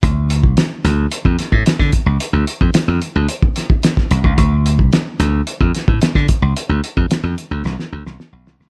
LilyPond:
<<
  \new Staff \with { instrumentName = "Slap bass" } { \clef bass \time 4/4 \key d \dorian \tempo 4 = 110 d,8. c,16 r8 d,8 r16 f,16 r16 a,16 r16 d16 r16 cis,16 | r16 d,16 r16 f,16 r16 f,16 r16 d,16 r4. c,16 cis,16 | d,8. c,16 r8 d,8 r16 f,16 r16 a,16 r16 d16 r16 cis,16 | r16 d,16 r16 f,16 r16 f,16 r16 d,16 c,16 r16 d,16 c,16 r16 b,,16 c,16 cis,16 | }
  \new DrumStaff \with { instrumentName = "Drums" } \drummode { \time 4/4 <hh bd>8 hh16 bd16 <hh sn>8 <hh sn>8 hh16 bd16 <hh sn>16 bd16 <hh sn>16 <bd sn>16 <hh bd>8 | hh8 hh16 bd16 <hh sn>8 hh8 hh16 bd16 <hh sn>16 bd16 <hh sn>16 <bd sn>16 hh16 bd16 | <hh bd>8 hh16 bd16 <hh sn>8 <hh sn>8 hh16 bd16 <hh sn>16 bd16 <hh sn>16 <bd sn>16 <hh bd>8 | hh8 hh16 bd16 <hh sn>8 hh8 sn16 sn8 sn16 sn8 sn16 sn16 | }
>>